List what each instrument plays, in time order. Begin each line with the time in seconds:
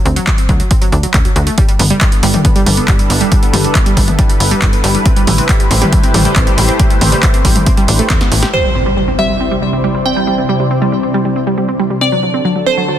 0.05 analog synth bass D2, synth arpeggio sound C4, closed hi-hat
0.16 synth arpeggio sound F#3, closed hi-hat
0.27 kick, clap, closed hi-hat
0.38 synth arpeggio sound C4, closed hi-hat
0.49 analog synth bass D2, synth arpeggio sound F#3, kick, closed hi-hat
0.60 synth arpeggio sound F#3, closed hi-hat
0.71 synth arpeggio sound C4, kick, closed hi-hat
0.82 synth arpeggio sound F#3, closed hi-hat
0.92 analog synth bass D2, synth arpeggio sound D4, closed hi-hat
1.03 synth arpeggio sound F#3, closed hi-hat
1.14 analog synth bass D2, synth arpeggio sound F#2, kick, clap, closed hi-hat
1.25 synth arpeggio sound F#3, closed hi-hat
1.36 analog synth bass D2, synth arpeggio sound F#4, closed hi-hat
1.47 synth arpeggio sound A3, closed hi-hat
1.58 synth arpeggio sound G3, analog synth pad G3 D4 E4 A4 B4, kick, closed hi-hat
1.69 synth arpeggio sound G3, closed hi-hat
1.79 analog synth bass G1, synth arpeggio sound B3, open hi-hat, mid tom
1.90 synth arpeggio sound G3, closed hi-hat
2.01 synth arpeggio sound G3, kick, clap, closed hi-hat
2.12 synth arpeggio sound B3, closed hi-hat
2.23 analog synth bass G1, synth arpeggio sound G3, open hi-hat
2.34 synth arpeggio sound G3, closed hi-hat, mid tom
2.45 synth arpeggio sound B3, kick, closed hi-hat, mid tom
2.56 synth arpeggio sound G3, closed hi-hat
2.66 analog synth bass G1, synth arpeggio sound G3, open hi-hat, mid tom
2.77 synth arpeggio sound B3, closed hi-hat
2.88 analog synth bass G1, synth arpeggio sound G3, kick, clap, closed hi-hat
2.99 synth arpeggio sound G3, closed hi-hat
3.10 analog synth bass G1, synth arpeggio sound B3, open hi-hat
3.21 synth arpeggio sound G3, closed hi-hat
3.32 synth arpeggio sound G3, kick, closed hi-hat
3.43 synth arpeggio sound B3, closed hi-hat
3.53 analog synth bass G1, synth arpeggio sound G3, open hi-hat, mid tom
3.64 synth arpeggio sound G3, closed hi-hat
3.75 synth arpeggio sound B3, kick, clap, closed hi-hat
3.86 synth arpeggio sound G3, closed hi-hat
3.97 analog synth bass G1, synth arpeggio sound G3, kick, open hi-hat
4.08 synth arpeggio sound B3, closed hi-hat, mid tom
4.19 synth arpeggio sound G3, kick, closed hi-hat
4.29 synth arpeggio sound G3, closed hi-hat
4.40 analog synth bass G1, synth arpeggio sound B3, open hi-hat
4.51 synth arpeggio sound G3, closed hi-hat
4.62 analog synth bass G1, kick, clap, closed hi-hat
4.73 synth arpeggio sound B3, closed hi-hat
4.84 analog synth bass G1, synth arpeggio sound G3, open hi-hat
4.95 synth arpeggio sound G3, closed hi-hat
5.05 analog synth pad A3 G4 C5, synth arpeggio sound C4, kick, closed hi-hat
5.16 synth arpeggio sound G3, closed hi-hat
5.27 analog synth bass A1, synth arpeggio sound G3, open hi-hat, mid tom
5.38 synth arpeggio sound C4, closed hi-hat
5.49 synth arpeggio sound G3, kick, clap, closed hi-hat
5.60 synth arpeggio sound G3, closed hi-hat
5.71 analog synth bass A1, synth arpeggio sound C4, open hi-hat
5.82 synth arpeggio sound G3, closed hi-hat, mid tom
5.92 synth arpeggio sound G3, kick, closed hi-hat, mid tom
6.03 synth arpeggio sound C4, closed hi-hat
6.14 analog synth bass A1, synth arpeggio sound G3, open hi-hat, mid tom
6.25 synth arpeggio sound G3, closed hi-hat
6.36 analog synth bass A1, synth arpeggio sound C4, kick, clap, closed hi-hat
6.47 synth arpeggio sound G3, closed hi-hat
6.58 analog synth bass A1, synth arpeggio sound G3, open hi-hat
6.69 synth arpeggio sound C4, closed hi-hat
6.79 synth arpeggio sound G3, kick, closed hi-hat
6.90 synth arpeggio sound G3, closed hi-hat
7.01 analog synth bass A1, synth arpeggio sound C4, open hi-hat, mid tom
7.12 synth arpeggio sound G3, closed hi-hat
7.23 synth arpeggio sound G3, kick, clap, closed hi-hat
7.34 synth arpeggio sound C4, closed hi-hat
7.45 analog synth bass A1, synth arpeggio sound G3, kick, open hi-hat
7.56 synth arpeggio sound G3, closed hi-hat, mid tom
7.66 synth arpeggio sound C4, kick, closed hi-hat
7.77 synth arpeggio sound G3, closed hi-hat
7.88 analog synth bass A1, synth arpeggio sound D4, open hi-hat
7.99 synth arpeggio sound A3, closed hi-hat
8.10 analog synth bass E2, synth arpeggio sound C4, kick, snare, clap, closed hi-hat
8.21 synth arpeggio sound B3, snare, closed hi-hat
8.32 analog synth bass A1, synth arpeggio sound A3, open hi-hat
8.43 synth arpeggio sound G4, snare, closed hi-hat
8.53 analog synth pad C3 C4 E4 C5 D5, synth arpeggio sound G3, synth pluck C5, impact
8.64 synth arpeggio sound G3
8.75 synth arpeggio sound C4
8.86 synth arpeggio sound G3
8.97 synth arpeggio sound G3
9.08 synth arpeggio sound C4
9.19 synth arpeggio sound G3, synth pluck E5
9.29 synth arpeggio sound G3
9.40 synth arpeggio sound C4
9.51 synth arpeggio sound G3
9.62 synth arpeggio sound G3
9.73 synth arpeggio sound C4
9.84 synth arpeggio sound G3
9.95 synth arpeggio sound G3
10.06 synth arpeggio sound C4, synth pluck G5
10.16 synth arpeggio sound G3
10.27 synth arpeggio sound G3
10.38 synth arpeggio sound C4
10.49 synth arpeggio sound G3
10.60 synth arpeggio sound G3
10.71 synth arpeggio sound C4
10.82 synth arpeggio sound G3
10.92 synth arpeggio sound G3
11.03 synth arpeggio sound C4
11.14 synth arpeggio sound G3
11.25 synth arpeggio sound G3
11.36 synth arpeggio sound C4
11.47 synth arpeggio sound G3
11.58 synth arpeggio sound G3
11.69 synth arpeggio sound C4
11.79 synth arpeggio sound G3
11.90 synth arpeggio sound G3
12.01 analog synth pad D3 D4 F#4 A4 A5, synth arpeggio sound C4, synth pluck D5
12.12 synth arpeggio sound F#3
12.23 synth arpeggio sound F#3
12.34 synth arpeggio sound C4
12.45 synth arpeggio sound F#3
12.56 synth arpeggio sound F#3
12.67 synth arpeggio sound C4, synth pluck C5
12.77 synth arpeggio sound F#3
12.88 synth arpeggio sound F#3